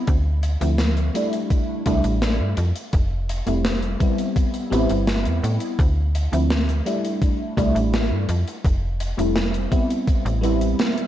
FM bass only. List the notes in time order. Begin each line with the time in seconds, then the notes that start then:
0.08 D2
0.61 D2
1.86 C2
2.04 A1
2.40 G2
2.57 F2
2.93 F1
3.47 F1
4.72 A1
4.90 G1
5.26 E2
5.43 A2
5.79 D2
6.33 D2
7.57 C2
7.75 A1
8.11 G2
8.29 F2
8.65 F1
9.18 F1
10.25 A1